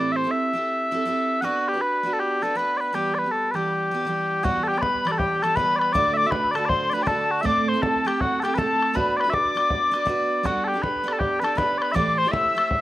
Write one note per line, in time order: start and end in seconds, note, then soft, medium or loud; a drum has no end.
0.00 0.24 A2 medium
0.00 0.25 E3 medium
0.00 0.25 C4 medium
0.00 0.25 E4 medium
0.00 0.23 G4 medium
0.00 0.23 A4 medium
0.00 0.12 D5 medium
0.12 0.16 E5 loud
0.16 0.31 C5 loud
0.24 0.52 C4 soft
0.24 0.54 E4 soft
0.24 0.55 G4 soft
0.24 0.55 A4 medium
0.31 1.41 E5 medium
0.53 0.90 C4 medium
0.53 0.91 E4 medium
0.53 0.92 G4 medium
0.53 0.93 A4 medium
0.91 1.04 C4 medium
0.91 1.05 E4 medium
0.91 1.06 G4 medium
0.91 1.07 A4 medium
1.05 1.42 C4 medium
1.05 1.43 E4 medium
1.05 1.43 G4 medium
1.05 1.44 A4 medium
1.41 1.74 B3 medium
1.41 1.74 D4 medium
1.41 1.74 F#4 medium
1.41 1.68 F#4 loud
1.41 1.72 B4 medium
1.41 1.45 F#5 loud
1.68 1.81 G4 medium
1.73 2.03 D4 soft
1.73 2.04 F#4 soft
1.73 2.05 B4 medium
1.81 2.13 B4 loud
2.03 2.41 B3 medium
2.03 2.41 D4 medium
2.03 2.42 F#4 medium
2.03 2.45 B4 medium
2.13 2.20 A4 medium
2.20 2.43 G4 medium
2.41 2.54 B3 medium
2.41 2.55 D4 medium
2.41 2.57 F#4 medium
2.41 2.57 A4 medium
2.41 2.58 B4 medium
2.55 2.92 B3 medium
2.55 2.93 D4 medium
2.55 2.94 F#4 medium
2.55 2.77 B4 loud
2.55 2.95 B4 medium
2.77 2.95 B4 medium
2.77 2.80 D5 medium
2.93 3.24 E3 medium
2.93 3.25 G3 medium
2.93 3.25 B3 medium
2.93 3.15 G4 medium
2.93 3.23 G4 medium
3.15 3.31 B4 medium
3.15 3.19 D5 medium
3.24 3.54 G3 soft
3.24 3.55 B3 soft
3.24 3.55 G4 soft
3.31 3.51 A4 medium
3.51 3.91 E3 medium
3.51 3.55 B4 medium
3.55 3.92 G3 medium
3.55 3.94 B3 medium
3.55 4.44 G4 medium
3.55 3.94 G4 medium
3.91 4.04 E3 medium
3.91 4.05 G3 medium
3.91 4.06 B3 medium
3.91 4.08 G4 medium
4.05 4.42 E3 medium
4.05 4.42 G3 medium
4.05 4.43 B3 medium
4.05 4.44 G4 medium
4.41 4.74 E3 medium
4.41 4.74 G3 medium
4.41 4.75 B3 medium
4.41 4.64 F#4 medium
4.41 4.67 F#5 medium
4.41 4.45 G5 soft
4.45 4.72 G4 medium
4.45 bodhran medium
4.57 bodhran soft
4.64 4.68 A4 medium
4.64 4.82 G5 medium
4.68 4.78 G4 medium
4.73 5.05 G3 soft
4.73 5.06 B3 soft
4.73 5.05 G4 soft
4.78 5.08 B4 medium
4.78 4.82 D5 medium
4.78 5.17 B5 medium
4.83 bodhran medium
4.95 bodhran soft
5.05 5.41 E3 medium
5.05 5.43 G3 medium
5.05 5.44 B3 medium
5.05 5.12 D5 medium
5.05 bodhran medium
5.09 5.45 G4 medium
5.09 5.19 A4 medium
5.18 5.43 G4 medium
5.18 5.41 G5 medium
5.18 bodhran medium
5.42 5.54 E3 medium
5.42 5.55 G3 medium
5.42 5.57 B3 medium
5.42 5.58 G4 medium
5.42 5.56 A4 medium
5.42 5.57 A5 medium
5.42 bodhran medium
5.56 5.94 E3 medium
5.56 5.94 G3 medium
5.56 5.95 B3 medium
5.56 5.95 G4 medium
5.56 5.76 B4 loud
5.56 5.79 B5 medium
5.56 bodhran medium
5.76 5.93 B4 medium
5.76 5.79 D5 medium
5.76 5.95 B5 medium
5.81 bodhran medium
5.93 6.25 D2 medium
5.93 6.25 A2 medium
5.93 6.25 D3 medium
5.93 6.24 A3 medium
5.93 6.25 D4 medium
5.93 6.23 F#4 medium
5.93 6.14 D5 loud
5.93 6.16 D6 loud
5.93 bodhran medium
6.07 bodhran soft
6.14 6.27 D5 loud
6.14 6.17 E5 loud
6.14 6.32 D6 medium
6.24 6.52 D3 soft
6.24 6.55 A3 medium
6.24 6.54 D4 soft
6.24 6.55 F#4 medium
6.24 6.31 E5 loud
6.30 6.51 B4 loud
6.30 6.56 B5 medium
6.30 bodhran medium
6.44 bodhran soft
6.51 6.90 D3 medium
6.51 6.55 D5 medium
6.51 6.70 A5 medium
6.55 6.94 A3 medium
6.55 6.92 D4 medium
6.55 6.94 F#4 medium
6.55 6.65 A4 medium
6.55 bodhran medium
6.65 6.90 C5 loud
6.65 6.69 D5 loud
6.65 6.95 C6 medium
6.70 bodhran medium
6.90 7.04 D3 medium
6.90 7.05 D4 medium
6.90 7.03 B4 medium
6.90 6.93 D5 medium
6.90 7.03 B5 medium
6.94 7.07 A3 medium
6.94 7.08 F#4 medium
7.02 7.43 D3 medium
7.02 7.07 D5 loud
7.02 7.08 G5 medium
7.07 7.42 A3 medium
7.07 7.44 D4 medium
7.07 7.44 F#4 medium
7.07 7.31 A4 loud
7.07 7.44 A5 medium
7.07 bodhran medium
7.31 7.41 F#4 medium
7.41 7.74 A2 medium
7.41 7.74 A3 medium
7.41 7.75 C4 medium
7.41 7.74 E4 medium
7.41 7.72 A4 medium
7.41 7.46 E5 loud
7.41 7.70 D6 medium
7.41 bodhran medium
7.46 7.68 D5 loud
7.57 bodhran soft
7.68 7.82 C5 loud
7.68 7.84 C6 medium
7.74 8.05 C4 soft
7.74 8.06 E4 medium
7.74 8.05 A4 medium
7.82 8.07 A4 loud
7.82 8.08 A5 medium
7.82 bodhran medium
7.96 bodhran soft
8.05 8.41 A3 medium
8.05 8.42 C4 medium
8.05 8.43 E4 medium
8.05 8.21 G4 medium
8.05 8.44 A4 medium
8.05 8.19 G5 medium
8.05 bodhran medium
8.19 8.40 F#4 medium
8.19 8.41 F#5 medium
8.19 bodhran medium
8.40 8.54 A3 medium
8.40 8.56 C4 medium
8.40 8.55 G4 medium
8.40 8.43 A4 medium
8.40 8.59 G5 medium
8.44 8.57 E4 medium
8.44 8.58 A4 medium
8.44 bodhran medium
8.55 8.93 A3 medium
8.55 8.94 C4 medium
8.55 8.95 E4 medium
8.55 8.96 A4 medium
8.55 8.58 B4 medium
8.55 8.96 A5 medium
8.55 bodhran medium
8.59 8.95 A4 medium
8.82 bodhran medium
8.94 9.24 B3 medium
8.94 9.25 D4 medium
8.94 9.25 F#4 medium
8.94 9.23 B4 medium
8.94 9.17 B4 loud
8.94 9.18 B5 medium
8.94 bodhran medium
9.09 bodhran soft
9.17 9.30 B4 loud
9.17 9.20 D5 loud
9.17 9.33 B5 medium
9.17 bodhran medium
9.24 9.55 D4 soft
9.24 9.56 F#4 soft
9.24 9.55 B4 medium
9.30 9.34 E5 medium
9.30 10.07 D6 medium
9.30 bodhran medium
9.34 10.46 D5 medium
9.45 bodhran soft
9.55 9.91 B3 medium
9.55 9.92 D4 medium
9.55 9.92 F#4 medium
9.55 9.95 B4 medium
9.55 bodhran medium
9.70 bodhran medium
9.91 10.04 B3 medium
9.91 10.06 D4 medium
9.91 10.07 F#4 medium
9.91 10.08 B4 medium
9.91 bodhran medium
10.05 10.43 B3 medium
10.05 10.44 D4 medium
10.05 10.45 F#4 medium
10.05 10.45 B4 medium
10.05 bodhran medium
10.43 10.74 G3 medium
10.43 10.75 B3 medium
10.43 10.75 D4 medium
10.43 10.64 F#4 medium
10.43 10.74 G4 medium
10.43 10.72 A4 medium
10.43 10.69 F#5 medium
10.43 bodhran medium
10.57 bodhran soft
10.64 10.82 G4 medium
10.64 10.68 A4 medium
10.64 10.81 G5 medium
10.73 11.03 D4 soft
10.73 11.04 G4 medium
10.73 11.05 A4 soft
10.81 11.13 B4 medium
10.81 11.14 B5 medium
10.81 bodhran medium
10.96 bodhran soft
11.03 11.40 B3 medium
11.03 11.41 D4 medium
11.03 11.43 G4 medium
11.03 11.44 A4 medium
11.08 bodhran medium
11.12 11.20 A4 medium
11.12 11.20 A5 medium
11.19 11.40 G4 medium
11.19 11.42 G5 medium
11.19 bodhran medium
11.40 11.54 B3 medium
11.40 11.56 D4 medium
11.40 11.57 G4 medium
11.40 11.57 A4 medium
11.40 11.44 B4 medium
11.40 11.58 A5 medium
11.44 11.58 A4 medium
11.44 bodhran medium
11.55 11.93 B3 medium
11.55 11.94 D4 medium
11.55 11.94 G4 medium
11.55 11.95 A4 medium
11.55 11.78 B4 medium
11.55 11.80 B5 medium
11.55 bodhran medium
11.78 11.82 D5 medium
11.78 11.96 B5 medium
11.78 bodhran medium
11.82 11.92 B4 medium
11.92 12.24 A2 medium
11.92 12.25 E3 medium
11.92 12.25 A3 medium
11.92 12.25 E4 medium
11.92 12.25 G4 medium
11.92 12.18 D5 loud
11.92 11.95 E5 loud
11.92 12.16 D6 medium
11.96 12.23 C5 medium
11.96 bodhran medium
12.08 bodhran soft
12.17 12.28 C5 loud
12.17 12.33 C6 medium
12.24 12.54 A3 soft
12.24 12.55 E4 soft
12.24 12.56 G4 medium
12.24 12.55 C5 medium
12.28 12.32 D5 medium
12.28 12.81 E5 medium
12.28 12.69 E6 medium
12.33 bodhran medium
12.45 bodhran soft
12.55 12.81 A3 medium
12.55 12.81 E4 medium
12.55 12.81 G4 medium
12.55 12.81 C5 medium
12.55 bodhran medium
12.71 bodhran medium